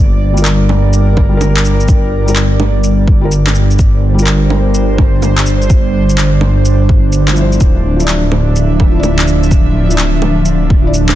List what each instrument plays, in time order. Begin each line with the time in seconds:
Already playing: analog synth pad A#3 D5
0.00 detuned saw bass G1, analog synth pad G3
0.19 analog synth pad D4
0.34 felt piano G3 F4, analog synth pad A#4, shaker
0.42 felt piano A#4, clap, shaker
0.69 low bongo
0.93 shaker
1.17 kick, low bongo
1.29 felt piano G3 F4
1.37 felt piano A#4, low bongo, shaker
1.57 clap
1.65 shaker
1.80 shaker
1.88 kick, shaker
2.26 felt piano G3 F4 A#4, shaker
2.36 clap, shaker
2.60 low bongo
2.84 shaker
3.08 kick
3.21 felt piano G3 F4
3.25 felt piano A#4
3.31 shaker
3.47 clap, low bongo
3.55 shaker
3.71 shaker
3.79 analog synth pad C5, kick, shaker
4.14 felt piano G3
4.19 felt piano F4 A#4, shaker
4.27 clap, shaker
4.50 low bongo
4.74 shaker
4.98 kick, low bongo
5.22 low bongo, shaker
5.38 clap
5.46 shaker
5.62 shaker
5.70 kick, shaker
6.10 shaker
6.18 clap, shaker
6.41 low bongo
6.65 shaker
6.89 kick
7.12 shaker
7.28 clap, low bongo, shaker
7.33 felt piano F3 E4, shaker
7.41 felt piano C5
7.52 shaker
7.60 detuned saw bass D1, analog synth pad D3, kick, shaker
7.96 felt piano F3 E4, shaker
8.01 felt piano D5, analog synth pad E5
8.08 clap, shaker
8.31 analog synth pad F3, low bongo
8.56 shaker
8.80 kick, low bongo
8.91 felt piano F3
8.95 felt piano E4
8.99 felt piano D5
9.03 low bongo, shaker
9.19 clap
9.27 shaker
9.43 shaker
9.51 kick, shaker
9.88 felt piano F3 E4, shaker
9.93 felt piano D5
9.98 clap, shaker
10.22 low bongo
10.45 shaker
10.70 kick
10.83 felt piano F3 E4 D5
10.94 shaker
11.09 clap, low bongo